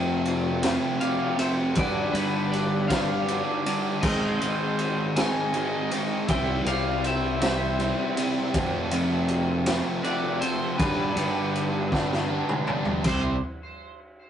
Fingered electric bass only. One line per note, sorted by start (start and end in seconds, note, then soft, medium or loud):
0.00 0.76 F2 loud
1.77 2.08 G2 medium
2.13 3.39 G2 loud
4.03 5.28 G#2 medium
6.29 6.60 C2 loud
6.66 7.91 C2 loud
8.54 9.80 F2 medium
10.79 11.11 G2 loud
11.16 12.42 G2 loud
13.05 13.40 C2 medium